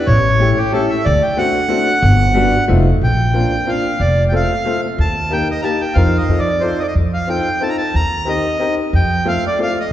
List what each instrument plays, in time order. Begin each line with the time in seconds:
0.07 upright bass A1, accordion C#5
0.39 upright piano A3 C#4 E4 G4
0.57 accordion G4
0.72 upright piano A3 C#4 E4 G4, accordion A4
0.90 accordion E5
1.05 upright bass D2, accordion D5
1.23 accordion G5
1.37 upright piano A3 C4 D4 F#4, accordion F#5
1.68 upright piano A3 C4 D4 F#4
2.02 upright bass G1
2.34 upright piano G3 B3 D4 F#4
2.68 upright bass F1, upright piano A3 C4 D#4 F4
3.01 upright bass A#1, accordion G5
3.34 upright piano A#3 C4 D4 F4
3.65 upright piano A#3 C4 D4 F4, accordion F5
4.00 upright bass F1, accordion D5
4.29 upright piano A3 C4, accordion G5
4.33 upright piano F4 A4, accordion F5
4.66 upright piano A3 C4 F4 A4
4.98 upright bass D#2, accordion A5
5.30 upright piano A#3 D#4 G4 A#4, accordion G5
5.51 accordion D#5
5.62 upright piano A#3 D#4 G4 A#4, accordion A5 A#5
5.81 accordion G5
5.94 upright bass F2, upright piano C4 D#4 F4 A#4, accordion F5
6.18 accordion D#5
6.28 upright bass F2, upright piano C4 D#4 F4 A4
6.39 accordion D5
6.61 upright piano C4 D#4 F4 A4, accordion C5
6.79 accordion D5 D#5
6.88 accordion D#5
6.95 upright bass F2
7.14 accordion F5
7.27 upright piano C4 D#4 F4 A4, accordion G5
7.61 upright piano C4 D#4 F4 A4, accordion A5
7.69 accordion A#5
7.78 accordion A5
7.94 upright bass D#2, accordion A#5
8.25 upright piano C4 D#4 G4 A#4, accordion D#5
8.59 upright piano C4 D#4 G4 A#4
8.93 upright bass F2, accordion G5
9.25 upright piano A3 C4 F4 A4, accordion F5
9.47 accordion D5
9.58 upright piano A3 C4 F4 A4
9.63 accordion F5
9.80 accordion D#5